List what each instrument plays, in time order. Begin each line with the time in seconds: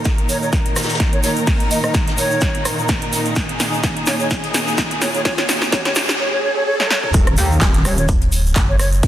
Already playing: string section A#2 D#3 D#4 A#4, riser
0.05 kick, snare, closed hi-hat, shaker
0.18 closed hi-hat
0.29 flute C#5, open hi-hat, shaker
0.42 flute C#5, shaker
0.52 kick, snare, closed hi-hat, shaker
0.66 closed hi-hat
0.76 cross-stick, snare, open hi-hat, shaker
0.83 snare, shaker
0.89 snare, shaker
0.94 snare, shaker
1.00 kick, snare, closed hi-hat
1.13 flute C#5, closed hi-hat
1.23 flute C#5, snare, open hi-hat, shaker
1.37 closed hi-hat, shaker
1.47 kick, snare, closed hi-hat, open hi-hat, shaker
1.60 closed hi-hat
1.71 flute D#5, open hi-hat, shaker
1.83 flute D#5, cross-stick, shaker
1.94 kick, snare, closed hi-hat, shaker
2.07 snare, closed hi-hat
2.18 flute C#5, open hi-hat, shaker
2.31 shaker
2.41 kick, snare, closed hi-hat, shaker
2.55 closed hi-hat
2.65 cross-stick, open hi-hat, shaker
2.79 shaker
2.88 kick, snare, closed hi-hat, shaker
3.02 closed hi-hat
3.13 snare, open hi-hat, shaker
3.25 closed hi-hat, shaker
3.36 string section G#4, kick, snare, closed hi-hat, shaker
3.49 closed hi-hat
3.59 snare, open hi-hat, shaker
3.73 shaker
3.83 kick, snare, closed hi-hat, shaker
3.97 closed hi-hat
4.06 flute C#5, snare, open hi-hat, shaker
4.20 flute C#5, shaker
4.30 kick, snare, closed hi-hat, shaker
4.44 closed hi-hat
4.54 snare, open hi-hat, shaker
4.67 shaker
4.78 kick, snare, closed hi-hat, shaker
4.91 closed hi-hat
5.01 flute C#5, snare, open hi-hat, shaker
5.15 flute C#5, closed hi-hat, shaker
5.25 flute C#5, kick, snare, closed hi-hat, open hi-hat, shaker
5.38 flute C#5, snare, closed hi-hat
5.48 snare, open hi-hat, shaker
5.62 snare, shaker
5.72 flute C#5, kick, snare, closed hi-hat, shaker
5.85 flute C#5, snare, closed hi-hat
5.95 snare, open hi-hat, shaker
5.97 shaker
6.09 snare, shaker
6.20 flute C#5
6.33 flute C#5
6.43 flute C#5
6.56 flute C#5
6.67 flute C#5
6.80 flute C#5, snare
6.91 flute C#5, snare
7.03 flute C#5, mid tom
7.14 wobble bass D#1, kick, closed hi-hat, impact, shaker
7.27 cross-stick, closed hi-hat
7.37 wobble bass D#2, open hi-hat, shaker
7.51 shaker
7.61 wobble bass D#1, kick, snare, clap, closed hi-hat, shaker
7.74 clap, closed hi-hat
7.85 flute C#5, cross-stick, open hi-hat, shaker
7.97 flute C#5, closed hi-hat, shaker
8.08 fm bass D#1, kick, closed hi-hat, shaker
8.21 closed hi-hat
8.32 open hi-hat, shaker
8.46 shaker
8.56 fm bass F#1, kick, snare, clap, closed hi-hat, shaker
8.69 flute C#5
8.79 flute C#5, cross-stick, snare, open hi-hat, shaker
8.93 closed hi-hat, shaker
9.03 kick, closed hi-hat, open hi-hat, shaker